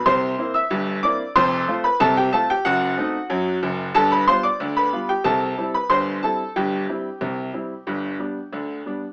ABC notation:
X:1
M:2/4
L:1/16
Q:1/4=92
K:C
V:1 name="Grand piano"
[cc']3 [ee']3 [dd']2 | [cc']3 [Bb] [Aa] [Gg] [Aa] [Gg] | [^F^f]8 | [Aa] [Bb] [cc'] [dd']2 [Bb]2 [Gg] |
[Aa]3 [Bb] [cc']2 [Aa]2 | [Gg]8- | [Gg]6 z2 |]
V:2 name="Grand piano" clef=bass
[C,,C,]2 [_B,CE]2 [G,,,G,,]2 [B,CE]2 | [F,,,F,,]2 [A,CF]2 [C,,C,]2 [A,CF]2 | [^F,,,^F,,]2 [A,C^D]2 [F,,^F,]2 [F,,,F,,]2 | [G,,,G,,]2 [G,B,F]2 [D,,D,]2 [G,B,F]2 |
[C,,C,]2 [G,CE]2 [G,,,G,,]2 [G,CE]2 | [G,,,G,,]2 [G,CE]2 [C,,C,]2 [G,CE]2 | [G,,,G,,]2 [G,B,D]2 [D,,D,]2 [G,B,D]2 |]